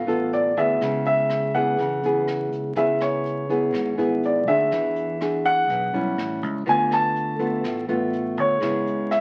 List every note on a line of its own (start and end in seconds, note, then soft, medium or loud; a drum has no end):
0.00 0.79 A2 soft
0.00 0.29 F5 medium
0.07 0.57 A1 medium
0.07 0.53 B3 medium
0.07 0.53 F4 medium
0.07 0.53 A4 medium
0.07 closed hi-hat soft
0.33 0.58 D5 medium
0.33 closed hi-hat soft
0.57 0.80 D2 medium
0.57 1.51 B3 medium
0.57 1.51 E4 medium
0.57 1.51 G#4 medium
0.57 1.05 E5 medium
0.57 kick soft
0.57 closed hi-hat soft
0.81 1.78 C#2 medium
0.81 1.77 C#3 medium
0.81 kick medium
0.81 cross-stick medium
0.81 closed hi-hat soft
1.05 1.56 E5 loud
1.05 closed hi-hat soft
1.30 cross-stick medium
1.30 closed hi-hat soft
1.54 2.00 B3 medium
1.54 2.00 E4 medium
1.54 2.00 G#4 medium
1.54 2.48 F#5 medium
1.54 kick soft
1.54 closed hi-hat soft
1.78 2.01 E2 medium
1.78 2.74 C#3 medium
1.78 kick medium
1.78 closed hi-hat soft
2.03 2.52 E2 medium
2.03 2.73 B3 medium
2.03 2.74 E4 medium
2.03 2.74 G#4 medium
2.03 closed hi-hat soft
2.28 cross-stick medium
2.28 closed hi-hat soft
2.52 2.75 C#2 medium
2.52 kick soft
2.52 closed hi-hat soft
2.76 3.74 C#2 medium
2.76 3.71 C#3 medium
2.76 3.46 B3 medium
2.76 3.46 E4 soft
2.76 3.46 G#4 medium
2.76 3.02 E5 medium
2.76 kick medium
2.76 closed hi-hat medium
3.01 3.95 C#5 medium
3.01 cross-stick medium
3.01 closed hi-hat soft
3.26 closed hi-hat soft
3.49 3.95 B3 medium
3.49 3.94 E4 medium
3.49 3.95 G#4 medium
3.49 kick soft
3.49 closed hi-hat soft
3.73 3.97 G#1 medium
3.73 4.68 G#2 medium
3.73 kick medium
3.73 cross-stick medium
3.73 closed hi-hat medium
3.98 4.47 G#1 medium
3.98 4.43 B3 medium
3.98 4.43 E4 medium
3.98 4.44 G#4 medium
3.98 closed hi-hat soft
4.23 4.49 D5 medium
4.23 closed hi-hat soft
4.47 4.70 D2 medium
4.47 5.20 D4 medium
4.47 5.20 F#4 medium
4.47 5.21 G#4 medium
4.47 5.48 E5 medium
4.47 kick soft
4.47 closed hi-hat soft
4.72 5.70 E2 medium
4.72 5.67 E3 medium
4.72 kick medium
4.72 cross-stick medium
4.72 closed hi-hat soft
4.96 closed hi-hat soft
5.21 5.90 D4 soft
5.21 5.90 F#4 soft
5.21 5.91 G#4 medium
5.21 cross-stick medium
5.21 closed hi-hat soft
5.45 6.39 F#5 loud
5.45 kick soft
5.45 closed hi-hat soft
5.69 5.92 B1 medium
5.69 6.16 B2 soft
5.69 kick soft
5.69 closed hi-hat medium
5.94 6.16 B1 medium
5.94 6.63 G3 medium
5.94 6.63 C#4 medium
5.94 6.63 E4 medium
5.94 closed hi-hat soft
6.18 6.43 A1 medium
6.18 cross-stick medium
6.18 closed hi-hat soft
6.43 6.65 C#2 medium
6.43 kick soft
6.43 closed hi-hat soft
6.66 7.64 D2 medium
6.66 7.62 D3 soft
6.66 7.36 A3 medium
6.66 7.36 B3 medium
6.66 7.36 F4 medium
6.66 6.93 G#5 medium
6.66 kick soft
6.66 closed hi-hat soft
6.91 7.86 A5 medium
6.91 cross-stick medium
6.91 closed hi-hat soft
7.16 closed hi-hat soft
7.39 7.84 A3 medium
7.39 7.85 B3 medium
7.39 7.85 F4 medium
7.39 kick soft
7.39 closed hi-hat soft
7.64 7.87 A1 medium
7.64 8.59 A2 soft
7.64 kick medium
7.64 cross-stick medium
7.64 closed hi-hat medium
7.88 8.38 A1 medium
7.88 8.58 A3 medium
7.88 8.58 B3 medium
7.88 8.58 F4 medium
7.88 closed hi-hat soft
8.13 closed hi-hat soft
8.37 8.60 D2 medium
8.37 9.14 C#5 medium
8.37 kick soft
8.37 closed hi-hat soft
8.60 9.21 C#2 medium
8.60 9.21 C#3 medium
8.60 9.21 G#3 medium
8.60 9.21 B3 medium
8.60 9.21 E4 medium
8.60 kick medium
8.60 cross-stick medium
8.60 closed hi-hat soft
8.87 closed hi-hat soft
9.11 9.21 E5 medium
9.11 cross-stick medium
9.11 closed hi-hat soft